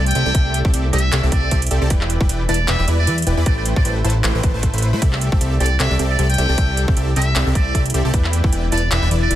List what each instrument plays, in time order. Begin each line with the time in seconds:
Already playing: analog synth bass C2, ambient pad C3 A3 E4
0.06 muted trumpet G5, closed hi-hat
0.11 closed hi-hat
0.15 analog synth bass C2, supersaw synth C4 G4 A4 D5 E5, closed hi-hat
0.26 analog synth bass C2, supersaw synth C4 G4 A4 D5 A5
0.35 analog synth bass C2, supersaw synth C4 G4 A4 D5 E5, kick, closed hi-hat
0.54 closed hi-hat
0.65 analog synth bass C2, supersaw synth C4 G4 A4 D5 E5, kick
0.73 analog synth bass C2, supersaw synth C4 G4 A4 D5 E5, closed hi-hat
0.93 analog synth bass C2, supersaw synth C4 G4 A4 D5 G5, muted trumpet E5, closed hi-hat
0.98 closed hi-hat
1.12 analog synth bass C2, supersaw synth C4 G4 A4 D5 E5, clap, closed hi-hat
1.23 analog synth bass C2, supersaw synth C4 G4 A4 D5 E5
1.32 analog synth bass C2, supersaw synth C4 G4 A4 D5 E5, muted trumpet D5, kick, closed hi-hat
1.51 analog synth bass C2, supersaw synth C4 G4 A4 D5 E5, kick, closed hi-hat
1.62 closed hi-hat
1.67 closed hi-hat
1.71 analog synth bass C2, supersaw synth C4 G4 A4 D5 E5, closed hi-hat
1.82 analog synth bass C2, supersaw synth C4 G4 A4 D5 A5
1.90 analog synth bass E1, ambient pad D3 G3, supersaw synth E3 E4 B4, kick, closed hi-hat
2.01 clap
2.10 closed hi-hat
2.21 analog synth bass E1, supersaw synth E3 E4 B4 D5 G5, kick
2.29 analog synth bass E1, supersaw synth E3 E4 B4 D5 G5, closed hi-hat
2.49 analog synth bass E1, supersaw synth E3 E4 B4 D5 A5, muted trumpet D5, closed hi-hat
2.54 closed hi-hat
2.68 analog synth bass E1, supersaw synth E3 E4 B4 D5 G5, muted trumpet E5, clap, closed hi-hat
2.79 analog synth bass E1, supersaw synth E3 E4 B4 D5 G5
2.88 analog synth bass E1, supersaw synth E3 E4 B4 D5 E5, closed hi-hat
2.99 muted trumpet D5
3.07 analog synth bass E2, supersaw synth E3 E4 B4 D5 E5, closed hi-hat
3.18 closed hi-hat
3.22 closed hi-hat
3.27 analog synth bass E1, supersaw synth E3 E4 B4 D5 G5, closed hi-hat
3.37 analog synth bass E2, supersaw synth E3 E4 B4 D5 B5
3.46 analog synth bass A1, ambient pad C3 A3 G4, supersaw synth A3 E4 B4 C5 G5, muted trumpet D5, kick, closed hi-hat
3.57 muted trumpet D5
3.65 closed hi-hat
3.76 analog synth bass A1, supersaw synth A3 E4 C5, muted trumpet D5, kick
3.85 analog synth bass A1, supersaw synth A3 E4 B4 C5 G5, muted trumpet D5, closed hi-hat
4.04 analog synth bass A1, supersaw synth A3 E4 B4 C5 A5, closed hi-hat
4.10 closed hi-hat
4.24 analog synth bass A1, supersaw synth A3 E4 B4 C5 G5, clap, closed hi-hat
4.35 analog synth bass A1, supersaw synth A3 E4 B4 C5 G5
4.43 analog synth bass A1, supersaw synth E4 B4 C5 A5, kick, closed hi-hat
4.54 analog synth bass A1, supersaw synth A3 E4 B4 C5 A5
4.63 kick, closed hi-hat
4.74 analog synth bass A1, supersaw synth A3 E4 B4 C5 B5, closed hi-hat
4.78 closed hi-hat
4.82 closed hi-hat
4.93 analog synth bass A2, supersaw synth A3 E4 B4 C5 B5
5.02 analog synth bass C2, ambient pad C3 E4, supersaw synth C4 G4 A4 D5 E5, kick, closed hi-hat
5.13 clap
5.21 closed hi-hat
5.32 analog synth bass C2, supersaw synth C4 G4 A4 D5 E5, kick
5.41 analog synth bass C2, supersaw synth C4 G4 A4 D5 E5, closed hi-hat
5.60 analog synth bass C2, supersaw synth C4 G4 A4 D5 G5, muted trumpet D5, closed hi-hat
5.66 closed hi-hat
5.80 analog synth bass C2, supersaw synth C4 G4 A4 D5 E5, muted trumpet E5, clap, closed hi-hat
5.91 analog synth bass C2, supersaw synth C4 G4 A4 D5 E5
5.99 analog synth bass C2, supersaw synth C4 G4 A4 D5 E5, closed hi-hat
6.10 muted trumpet D5
6.19 analog synth bass C2, supersaw synth C4 G4 A4 D5 E5, closed hi-hat
6.29 muted trumpet G5, closed hi-hat
6.34 closed hi-hat
6.38 analog synth bass C2, supersaw synth C4 G4 A4 D5 E5, closed hi-hat
6.49 analog synth bass C2, supersaw synth C4 G4 A4 D5 A5
6.58 analog synth bass C2, supersaw synth C4 G4 A4 D5 E5, kick, closed hi-hat
6.77 closed hi-hat
6.88 analog synth bass C2, supersaw synth C4 G4 A4 D5 E5, kick
6.97 analog synth bass C2, supersaw synth C4 G4 A4 D5 E5, closed hi-hat
7.16 analog synth bass C2, supersaw synth C4 G4 A4 D5 G5, muted trumpet E5, closed hi-hat
7.22 closed hi-hat
7.36 analog synth bass C2, supersaw synth C4 G4 A4 D5 E5, clap, closed hi-hat
7.46 analog synth bass C2, supersaw synth C4 G4 A4 D5 E5
7.55 analog synth bass C2, supersaw synth C4 G4 A4 D5 E5, muted trumpet D5, kick, closed hi-hat
7.75 analog synth bass C2, supersaw synth C4 G4 A4 D5 E5, kick, closed hi-hat
7.86 closed hi-hat
7.90 closed hi-hat
7.94 analog synth bass C2, supersaw synth C4 G4 A4 D5 E5, closed hi-hat
8.05 analog synth bass C2, supersaw synth C4 G4 A4 D5 A5
8.14 analog synth bass E1, ambient pad D3 G3, supersaw synth E3 E4 B4 D5 G5, kick, closed hi-hat
8.24 clap
8.33 closed hi-hat
8.44 analog synth bass E1, supersaw synth E3 E4 B4 D5 G5, kick
8.53 analog synth bass E1, supersaw synth E3 E4 B4 D5 G5, closed hi-hat
8.72 analog synth bass E1, supersaw synth E3 E4 B4 D5 A5, muted trumpet D5, closed hi-hat
8.77 closed hi-hat
8.91 analog synth bass E1, supersaw synth E3 E4 B4 D5 G5, muted trumpet E5, clap, closed hi-hat
9.02 analog synth bass E1, supersaw synth E3 E4 B4 D5 G5
9.11 analog synth bass E1, supersaw synth E3 E4 B4 D5 E5, closed hi-hat
9.22 muted trumpet D5
9.30 analog synth bass E1, supersaw synth E3 E4 B4 D5 E5, closed hi-hat